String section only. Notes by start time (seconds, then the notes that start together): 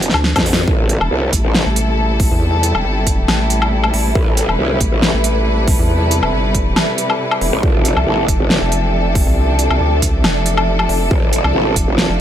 0.68 C3 G3 E4 A4
4.15 B4
7.63 F3 D4 A4